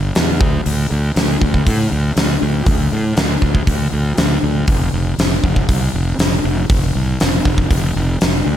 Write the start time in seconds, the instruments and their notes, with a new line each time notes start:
0.15 fingered electric bass E2, snare, open hi-hat
0.41 fingered electric bass D2, kick
0.66 fingered electric bass D2, open hi-hat
0.91 fingered electric bass D2
1.16 fingered electric bass D2, snare, open hi-hat
1.42 fingered electric bass D2, kick
1.54 kick
1.67 fingered electric bass A2, kick, open hi-hat
1.92 fingered electric bass D2
2.16 fingered electric bass D2, snare, open hi-hat
2.42 fingered electric bass D2
2.66 fingered electric bass D2, kick, open hi-hat
2.92 fingered electric bass A2
3.17 fingered electric bass D2, snare, open hi-hat
3.42 fingered electric bass D2, kick
3.55 kick
3.67 fingered electric bass D2, kick, open hi-hat
3.92 fingered electric bass D2
4.17 fingered electric bass D2, snare, open hi-hat
4.43 fingered electric bass D2
4.68 fingered electric bass F1, kick, open hi-hat
4.93 fingered electric bass F1
5.18 fingered electric bass F1, snare, open hi-hat
5.44 fingered electric bass F1, kick
5.56 kick
5.69 fingered electric bass C2, kick, open hi-hat
5.94 fingered electric bass F1
6.19 fingered electric bass F1, snare, open hi-hat
6.44 fingered electric bass F1
6.70 fingered electric bass F1, kick, open hi-hat
6.95 fingered electric bass C2
7.20 fingered electric bass F1, snare, open hi-hat
7.45 fingered electric bass F1, kick
7.58 kick
7.71 fingered electric bass F1, kick, open hi-hat
7.96 fingered electric bass F1
8.21 fingered electric bass F1, snare, open hi-hat
8.46 fingered electric bass D2